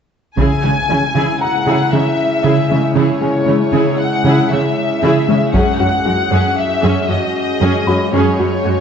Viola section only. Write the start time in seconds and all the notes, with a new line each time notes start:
0.38 E4 G#4
0.64 G#3 C#4
0.90 C#4 E4
1.15 E4 G#4
1.67 E4 G#4
1.93 G#3 C#4
2.45 E4 G#4
2.71 G#3 C#4
2.97 E4 G#4
3.22 G#3 C#4
3.49 C#4 E4
3.74 E4 G#4
4.26 E4 G#4
4.51 G#3 C#4
5.03 E4 G#4
5.29 G#3 C#4
5.54 C#4 G#4
5.80 F#3 C#4
6.06 G#3 F#4
6.31 C#4 G#4
6.84 C#4 G#4
7.10 F#3 C#4
7.62 C#4 G#4
7.89 F#3 C#4
8.14 C#4 G#4
8.39 F#3 C#4
8.65 G#3 F#4